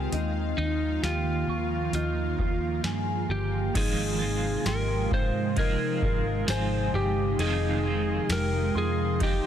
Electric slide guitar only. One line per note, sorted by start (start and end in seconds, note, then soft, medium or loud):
0.58 1.04 D#4 medium
1.04 1.94 F4 medium
1.95 2.81 F4 medium
3.31 3.77 G4 medium
3.77 4.68 G#4 medium
4.68 5.10 A#4 medium
5.14 5.59 C5 medium
5.59 6.50 A#4 medium
6.50 6.96 C5 medium
6.95 7.41 G4 medium
7.40 8.32 G#4 loud
8.32 8.78 A#4 medium
8.78 9.23 G#4 medium
9.23 9.46 G4 medium